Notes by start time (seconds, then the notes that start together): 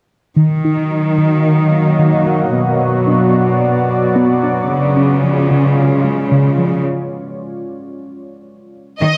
0.36 D#3 F#3 A#3 F#4 D#5
0.65 D#4
0.91 F#3
1.18 D#3
1.72 A#3
1.99 D#3
2.26 F#3
2.53 B2 B3 D5
2.80 B4
3.07 D4
3.34 B3
3.88 F#4
4.16 B3
4.43 D4
4.69 C#3 G#3 C#4 F4 C#5
4.97 C#4
5.24 F3
5.51 C#3
6.04 G#3
6.32 C#3
6.58 F3
9.02 D#3 D#5